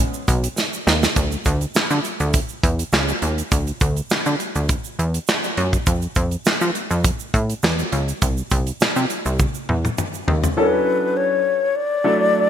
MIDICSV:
0, 0, Header, 1, 5, 480
1, 0, Start_track
1, 0, Tempo, 588235
1, 949, Time_signature, 4, 2, 24, 8
1, 10196, End_track
2, 0, Start_track
2, 0, Title_t, "Alto flute"
2, 0, Program_c, 0, 73
2, 8629, Note_on_c, 0, 71, 110
2, 9113, Note_on_c, 0, 73, 102
2, 9125, Note_off_c, 0, 71, 0
2, 9594, Note_on_c, 0, 74, 127
2, 9606, Note_off_c, 0, 73, 0
2, 10196, Note_off_c, 0, 74, 0
2, 10196, End_track
3, 0, Start_track
3, 0, Title_t, "Grand piano"
3, 0, Program_c, 1, 0
3, 8622, Note_on_c, 1, 54, 69
3, 8625, Note_on_c, 1, 61, 71
3, 8626, Note_on_c, 1, 62, 57
3, 8628, Note_on_c, 1, 64, 59
3, 8630, Note_on_c, 1, 69, 81
3, 9287, Note_off_c, 1, 54, 0
3, 9288, Note_off_c, 1, 61, 0
3, 9289, Note_off_c, 1, 62, 0
3, 9290, Note_off_c, 1, 64, 0
3, 9291, Note_off_c, 1, 69, 0
3, 9825, Note_on_c, 1, 54, 77
3, 9826, Note_on_c, 1, 57, 71
3, 9827, Note_on_c, 1, 62, 64
3, 9830, Note_on_c, 1, 64, 69
3, 9830, Note_on_c, 1, 69, 76
3, 10161, Note_off_c, 1, 54, 0
3, 10162, Note_off_c, 1, 57, 0
3, 10162, Note_off_c, 1, 62, 0
3, 10164, Note_off_c, 1, 64, 0
3, 10164, Note_off_c, 1, 69, 0
3, 10196, End_track
4, 0, Start_track
4, 0, Title_t, "Analog synth bass"
4, 0, Program_c, 2, 38
4, 229, Note_on_c, 2, 35, 102
4, 394, Note_off_c, 2, 35, 0
4, 710, Note_on_c, 2, 39, 109
4, 875, Note_off_c, 2, 39, 0
4, 949, Note_on_c, 2, 38, 89
4, 1115, Note_off_c, 2, 38, 0
4, 1189, Note_on_c, 2, 38, 107
4, 1355, Note_off_c, 2, 38, 0
4, 1430, Note_on_c, 2, 50, 49
4, 1480, Note_off_c, 2, 50, 0
4, 1555, Note_on_c, 2, 50, 92
4, 1633, Note_off_c, 2, 50, 0
4, 1797, Note_on_c, 2, 38, 103
4, 1962, Note_off_c, 2, 38, 0
4, 2149, Note_on_c, 2, 40, 91
4, 2315, Note_off_c, 2, 40, 0
4, 2388, Note_on_c, 2, 37, 107
4, 2554, Note_off_c, 2, 37, 0
4, 2630, Note_on_c, 2, 39, 89
4, 2795, Note_off_c, 2, 39, 0
4, 2871, Note_on_c, 2, 38, 80
4, 3036, Note_off_c, 2, 38, 0
4, 3109, Note_on_c, 2, 38, 94
4, 3274, Note_off_c, 2, 38, 0
4, 3352, Note_on_c, 2, 50, 45
4, 3402, Note_off_c, 2, 50, 0
4, 3477, Note_on_c, 2, 50, 86
4, 3554, Note_off_c, 2, 50, 0
4, 3718, Note_on_c, 2, 38, 86
4, 3882, Note_off_c, 2, 38, 0
4, 4071, Note_on_c, 2, 40, 95
4, 4235, Note_off_c, 2, 40, 0
4, 4550, Note_on_c, 2, 42, 112
4, 4715, Note_off_c, 2, 42, 0
4, 4789, Note_on_c, 2, 41, 84
4, 4954, Note_off_c, 2, 41, 0
4, 5028, Note_on_c, 2, 41, 104
4, 5194, Note_off_c, 2, 41, 0
4, 5271, Note_on_c, 2, 53, 47
4, 5321, Note_off_c, 2, 53, 0
4, 5396, Note_on_c, 2, 53, 94
4, 5474, Note_off_c, 2, 53, 0
4, 5635, Note_on_c, 2, 41, 98
4, 5801, Note_off_c, 2, 41, 0
4, 5988, Note_on_c, 2, 45, 95
4, 6154, Note_off_c, 2, 45, 0
4, 6227, Note_on_c, 2, 40, 97
4, 6393, Note_off_c, 2, 40, 0
4, 6467, Note_on_c, 2, 37, 98
4, 6633, Note_off_c, 2, 37, 0
4, 6709, Note_on_c, 2, 36, 78
4, 6874, Note_off_c, 2, 36, 0
4, 6948, Note_on_c, 2, 36, 100
4, 7114, Note_off_c, 2, 36, 0
4, 7188, Note_on_c, 2, 48, 45
4, 7239, Note_off_c, 2, 48, 0
4, 7313, Note_on_c, 2, 48, 94
4, 7392, Note_off_c, 2, 48, 0
4, 7554, Note_on_c, 2, 36, 95
4, 7720, Note_off_c, 2, 36, 0
4, 7908, Note_on_c, 2, 40, 91
4, 8074, Note_off_c, 2, 40, 0
4, 8386, Note_on_c, 2, 39, 101
4, 8552, Note_off_c, 2, 39, 0
4, 10196, End_track
5, 0, Start_track
5, 0, Title_t, "Drums"
5, 113, Note_on_c, 9, 82, 52
5, 195, Note_off_c, 9, 82, 0
5, 228, Note_on_c, 9, 82, 50
5, 229, Note_on_c, 9, 36, 83
5, 234, Note_on_c, 9, 42, 79
5, 309, Note_off_c, 9, 82, 0
5, 311, Note_off_c, 9, 36, 0
5, 315, Note_off_c, 9, 42, 0
5, 357, Note_on_c, 9, 42, 57
5, 363, Note_on_c, 9, 82, 53
5, 438, Note_off_c, 9, 42, 0
5, 445, Note_off_c, 9, 82, 0
5, 466, Note_on_c, 9, 82, 70
5, 475, Note_on_c, 9, 38, 61
5, 548, Note_off_c, 9, 82, 0
5, 557, Note_off_c, 9, 38, 0
5, 598, Note_on_c, 9, 82, 48
5, 680, Note_off_c, 9, 82, 0
5, 713, Note_on_c, 9, 38, 94
5, 714, Note_on_c, 9, 82, 55
5, 794, Note_off_c, 9, 38, 0
5, 795, Note_off_c, 9, 82, 0
5, 841, Note_on_c, 9, 82, 59
5, 842, Note_on_c, 9, 38, 83
5, 922, Note_off_c, 9, 82, 0
5, 924, Note_off_c, 9, 38, 0
5, 949, Note_on_c, 9, 36, 102
5, 949, Note_on_c, 9, 42, 84
5, 949, Note_on_c, 9, 82, 76
5, 1030, Note_off_c, 9, 42, 0
5, 1031, Note_off_c, 9, 36, 0
5, 1031, Note_off_c, 9, 82, 0
5, 1076, Note_on_c, 9, 82, 39
5, 1080, Note_on_c, 9, 42, 32
5, 1157, Note_off_c, 9, 82, 0
5, 1161, Note_off_c, 9, 42, 0
5, 1182, Note_on_c, 9, 82, 51
5, 1190, Note_on_c, 9, 36, 78
5, 1193, Note_on_c, 9, 42, 72
5, 1264, Note_off_c, 9, 82, 0
5, 1271, Note_off_c, 9, 36, 0
5, 1275, Note_off_c, 9, 42, 0
5, 1314, Note_on_c, 9, 42, 41
5, 1319, Note_on_c, 9, 82, 51
5, 1396, Note_off_c, 9, 42, 0
5, 1401, Note_off_c, 9, 82, 0
5, 1425, Note_on_c, 9, 82, 74
5, 1439, Note_on_c, 9, 38, 92
5, 1445, Note_on_c, 9, 39, 83
5, 1506, Note_off_c, 9, 82, 0
5, 1520, Note_off_c, 9, 38, 0
5, 1527, Note_off_c, 9, 39, 0
5, 1553, Note_on_c, 9, 82, 52
5, 1564, Note_on_c, 9, 42, 28
5, 1635, Note_off_c, 9, 82, 0
5, 1646, Note_off_c, 9, 42, 0
5, 1667, Note_on_c, 9, 82, 46
5, 1671, Note_on_c, 9, 42, 62
5, 1749, Note_off_c, 9, 82, 0
5, 1753, Note_off_c, 9, 42, 0
5, 1795, Note_on_c, 9, 82, 45
5, 1796, Note_on_c, 9, 42, 50
5, 1877, Note_off_c, 9, 82, 0
5, 1878, Note_off_c, 9, 42, 0
5, 1906, Note_on_c, 9, 82, 71
5, 1907, Note_on_c, 9, 42, 90
5, 1909, Note_on_c, 9, 36, 93
5, 1987, Note_off_c, 9, 82, 0
5, 1989, Note_off_c, 9, 42, 0
5, 1991, Note_off_c, 9, 36, 0
5, 2030, Note_on_c, 9, 82, 46
5, 2112, Note_off_c, 9, 82, 0
5, 2150, Note_on_c, 9, 36, 87
5, 2153, Note_on_c, 9, 42, 73
5, 2231, Note_off_c, 9, 36, 0
5, 2234, Note_off_c, 9, 42, 0
5, 2279, Note_on_c, 9, 42, 57
5, 2282, Note_on_c, 9, 82, 50
5, 2360, Note_off_c, 9, 42, 0
5, 2363, Note_off_c, 9, 82, 0
5, 2387, Note_on_c, 9, 82, 69
5, 2396, Note_on_c, 9, 38, 98
5, 2402, Note_on_c, 9, 39, 74
5, 2468, Note_off_c, 9, 82, 0
5, 2477, Note_off_c, 9, 38, 0
5, 2484, Note_off_c, 9, 39, 0
5, 2519, Note_on_c, 9, 82, 43
5, 2600, Note_off_c, 9, 82, 0
5, 2628, Note_on_c, 9, 42, 66
5, 2710, Note_off_c, 9, 42, 0
5, 2759, Note_on_c, 9, 42, 46
5, 2764, Note_on_c, 9, 82, 55
5, 2840, Note_off_c, 9, 42, 0
5, 2846, Note_off_c, 9, 82, 0
5, 2870, Note_on_c, 9, 36, 108
5, 2870, Note_on_c, 9, 42, 81
5, 2870, Note_on_c, 9, 82, 75
5, 2952, Note_off_c, 9, 36, 0
5, 2952, Note_off_c, 9, 42, 0
5, 2952, Note_off_c, 9, 82, 0
5, 2997, Note_on_c, 9, 82, 40
5, 2998, Note_on_c, 9, 42, 35
5, 3078, Note_off_c, 9, 82, 0
5, 3079, Note_off_c, 9, 42, 0
5, 3104, Note_on_c, 9, 82, 52
5, 3110, Note_on_c, 9, 36, 90
5, 3112, Note_on_c, 9, 42, 78
5, 3186, Note_off_c, 9, 82, 0
5, 3192, Note_off_c, 9, 36, 0
5, 3193, Note_off_c, 9, 42, 0
5, 3235, Note_on_c, 9, 42, 39
5, 3240, Note_on_c, 9, 82, 49
5, 3317, Note_off_c, 9, 42, 0
5, 3321, Note_off_c, 9, 82, 0
5, 3345, Note_on_c, 9, 82, 74
5, 3357, Note_on_c, 9, 38, 103
5, 3363, Note_on_c, 9, 39, 85
5, 3427, Note_off_c, 9, 82, 0
5, 3438, Note_off_c, 9, 38, 0
5, 3445, Note_off_c, 9, 39, 0
5, 3475, Note_on_c, 9, 82, 46
5, 3481, Note_on_c, 9, 42, 31
5, 3557, Note_off_c, 9, 82, 0
5, 3563, Note_off_c, 9, 42, 0
5, 3588, Note_on_c, 9, 82, 40
5, 3589, Note_on_c, 9, 42, 62
5, 3670, Note_off_c, 9, 82, 0
5, 3671, Note_off_c, 9, 42, 0
5, 3716, Note_on_c, 9, 42, 42
5, 3718, Note_on_c, 9, 82, 46
5, 3798, Note_off_c, 9, 42, 0
5, 3799, Note_off_c, 9, 82, 0
5, 3826, Note_on_c, 9, 42, 89
5, 3828, Note_on_c, 9, 82, 70
5, 3829, Note_on_c, 9, 36, 108
5, 3908, Note_off_c, 9, 42, 0
5, 3909, Note_off_c, 9, 82, 0
5, 3911, Note_off_c, 9, 36, 0
5, 3952, Note_on_c, 9, 82, 51
5, 4034, Note_off_c, 9, 82, 0
5, 4074, Note_on_c, 9, 42, 61
5, 4155, Note_off_c, 9, 42, 0
5, 4197, Note_on_c, 9, 42, 58
5, 4202, Note_on_c, 9, 82, 46
5, 4278, Note_off_c, 9, 42, 0
5, 4283, Note_off_c, 9, 82, 0
5, 4304, Note_on_c, 9, 82, 68
5, 4315, Note_on_c, 9, 38, 96
5, 4321, Note_on_c, 9, 39, 81
5, 4386, Note_off_c, 9, 82, 0
5, 4396, Note_off_c, 9, 38, 0
5, 4403, Note_off_c, 9, 39, 0
5, 4436, Note_on_c, 9, 82, 39
5, 4441, Note_on_c, 9, 42, 36
5, 4518, Note_off_c, 9, 82, 0
5, 4523, Note_off_c, 9, 42, 0
5, 4547, Note_on_c, 9, 42, 71
5, 4629, Note_off_c, 9, 42, 0
5, 4676, Note_on_c, 9, 36, 84
5, 4677, Note_on_c, 9, 42, 38
5, 4679, Note_on_c, 9, 82, 54
5, 4758, Note_off_c, 9, 36, 0
5, 4758, Note_off_c, 9, 42, 0
5, 4761, Note_off_c, 9, 82, 0
5, 4786, Note_on_c, 9, 82, 75
5, 4788, Note_on_c, 9, 42, 80
5, 4789, Note_on_c, 9, 36, 110
5, 4867, Note_off_c, 9, 82, 0
5, 4870, Note_off_c, 9, 36, 0
5, 4870, Note_off_c, 9, 42, 0
5, 4912, Note_on_c, 9, 82, 43
5, 4916, Note_on_c, 9, 42, 32
5, 4994, Note_off_c, 9, 82, 0
5, 4998, Note_off_c, 9, 42, 0
5, 5020, Note_on_c, 9, 82, 53
5, 5029, Note_on_c, 9, 36, 90
5, 5030, Note_on_c, 9, 42, 82
5, 5101, Note_off_c, 9, 82, 0
5, 5110, Note_off_c, 9, 36, 0
5, 5112, Note_off_c, 9, 42, 0
5, 5152, Note_on_c, 9, 42, 39
5, 5157, Note_on_c, 9, 82, 44
5, 5234, Note_off_c, 9, 42, 0
5, 5238, Note_off_c, 9, 82, 0
5, 5264, Note_on_c, 9, 82, 78
5, 5277, Note_on_c, 9, 38, 103
5, 5283, Note_on_c, 9, 39, 81
5, 5346, Note_off_c, 9, 82, 0
5, 5358, Note_off_c, 9, 38, 0
5, 5365, Note_off_c, 9, 39, 0
5, 5393, Note_on_c, 9, 82, 58
5, 5403, Note_on_c, 9, 42, 29
5, 5475, Note_off_c, 9, 82, 0
5, 5485, Note_off_c, 9, 42, 0
5, 5509, Note_on_c, 9, 42, 60
5, 5510, Note_on_c, 9, 82, 39
5, 5590, Note_off_c, 9, 42, 0
5, 5592, Note_off_c, 9, 82, 0
5, 5636, Note_on_c, 9, 82, 46
5, 5637, Note_on_c, 9, 42, 45
5, 5718, Note_off_c, 9, 82, 0
5, 5719, Note_off_c, 9, 42, 0
5, 5747, Note_on_c, 9, 82, 68
5, 5748, Note_on_c, 9, 36, 102
5, 5748, Note_on_c, 9, 42, 90
5, 5829, Note_off_c, 9, 82, 0
5, 5830, Note_off_c, 9, 36, 0
5, 5830, Note_off_c, 9, 42, 0
5, 5871, Note_on_c, 9, 82, 48
5, 5953, Note_off_c, 9, 82, 0
5, 5989, Note_on_c, 9, 36, 76
5, 5993, Note_on_c, 9, 42, 60
5, 6070, Note_off_c, 9, 36, 0
5, 6074, Note_off_c, 9, 42, 0
5, 6117, Note_on_c, 9, 42, 48
5, 6123, Note_on_c, 9, 82, 43
5, 6198, Note_off_c, 9, 42, 0
5, 6204, Note_off_c, 9, 82, 0
5, 6224, Note_on_c, 9, 82, 64
5, 6236, Note_on_c, 9, 38, 111
5, 6243, Note_on_c, 9, 39, 78
5, 6306, Note_off_c, 9, 82, 0
5, 6318, Note_off_c, 9, 38, 0
5, 6324, Note_off_c, 9, 39, 0
5, 6357, Note_on_c, 9, 82, 43
5, 6360, Note_on_c, 9, 42, 30
5, 6439, Note_off_c, 9, 82, 0
5, 6441, Note_off_c, 9, 42, 0
5, 6465, Note_on_c, 9, 42, 67
5, 6547, Note_off_c, 9, 42, 0
5, 6595, Note_on_c, 9, 42, 44
5, 6599, Note_on_c, 9, 82, 55
5, 6676, Note_off_c, 9, 42, 0
5, 6680, Note_off_c, 9, 82, 0
5, 6706, Note_on_c, 9, 42, 79
5, 6707, Note_on_c, 9, 82, 72
5, 6708, Note_on_c, 9, 36, 104
5, 6787, Note_off_c, 9, 42, 0
5, 6789, Note_off_c, 9, 36, 0
5, 6789, Note_off_c, 9, 82, 0
5, 6833, Note_on_c, 9, 82, 45
5, 6914, Note_off_c, 9, 82, 0
5, 6940, Note_on_c, 9, 82, 54
5, 6948, Note_on_c, 9, 36, 86
5, 6950, Note_on_c, 9, 42, 82
5, 7021, Note_off_c, 9, 82, 0
5, 7029, Note_off_c, 9, 36, 0
5, 7032, Note_off_c, 9, 42, 0
5, 7072, Note_on_c, 9, 42, 42
5, 7076, Note_on_c, 9, 82, 48
5, 7154, Note_off_c, 9, 42, 0
5, 7157, Note_off_c, 9, 82, 0
5, 7184, Note_on_c, 9, 82, 70
5, 7196, Note_on_c, 9, 38, 115
5, 7203, Note_on_c, 9, 39, 78
5, 7266, Note_off_c, 9, 82, 0
5, 7278, Note_off_c, 9, 38, 0
5, 7285, Note_off_c, 9, 39, 0
5, 7312, Note_on_c, 9, 82, 54
5, 7319, Note_on_c, 9, 42, 32
5, 7394, Note_off_c, 9, 82, 0
5, 7400, Note_off_c, 9, 42, 0
5, 7425, Note_on_c, 9, 82, 44
5, 7426, Note_on_c, 9, 42, 66
5, 7507, Note_off_c, 9, 42, 0
5, 7507, Note_off_c, 9, 82, 0
5, 7553, Note_on_c, 9, 42, 46
5, 7553, Note_on_c, 9, 82, 49
5, 7634, Note_off_c, 9, 82, 0
5, 7635, Note_off_c, 9, 42, 0
5, 7664, Note_on_c, 9, 82, 69
5, 7667, Note_on_c, 9, 36, 102
5, 7667, Note_on_c, 9, 48, 54
5, 7746, Note_off_c, 9, 82, 0
5, 7748, Note_off_c, 9, 36, 0
5, 7748, Note_off_c, 9, 48, 0
5, 7789, Note_on_c, 9, 82, 49
5, 7871, Note_off_c, 9, 82, 0
5, 7907, Note_on_c, 9, 47, 58
5, 7988, Note_off_c, 9, 47, 0
5, 8035, Note_on_c, 9, 47, 62
5, 8040, Note_on_c, 9, 82, 45
5, 8117, Note_off_c, 9, 47, 0
5, 8122, Note_off_c, 9, 82, 0
5, 8144, Note_on_c, 9, 82, 71
5, 8147, Note_on_c, 9, 45, 75
5, 8225, Note_off_c, 9, 82, 0
5, 8228, Note_off_c, 9, 45, 0
5, 8274, Note_on_c, 9, 82, 44
5, 8356, Note_off_c, 9, 82, 0
5, 8388, Note_on_c, 9, 43, 77
5, 8470, Note_off_c, 9, 43, 0
5, 8515, Note_on_c, 9, 43, 75
5, 8519, Note_on_c, 9, 82, 58
5, 8597, Note_off_c, 9, 43, 0
5, 8600, Note_off_c, 9, 82, 0
5, 10196, End_track
0, 0, End_of_file